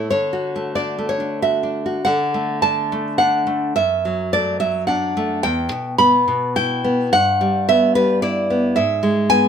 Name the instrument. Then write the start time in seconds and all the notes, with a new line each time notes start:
nylon-string guitar
0.10 D3 C#5
0.33 F#4
0.56 A3
0.75 D4 D5
0.98 A3
1.09 C#5
1.20 D4
1.42 F#4 E5
1.63 D4
1.86 F#4
2.05 D3 F#5
2.34 A3
2.62 D4 A5
2.92 A3
3.18 D4 F#5
3.47 A3
3.76 F#2 E5
4.05 F#3
4.33 A3 D5
4.60 F#3 E5
4.87 D4 F#5
5.17 A3
5.43 E2 G5
5.72 B2
5.98 B3 B5
6.28 B2
6.56 E4 G5
6.84 B3
7.13 G2 F#5
7.41 G3
7.69 B3 E5
7.95 G3 B4
8.22 E4 D5
8.50 B3
8.76 G#2 E5
9.03 G#3
9.30 B3 G#5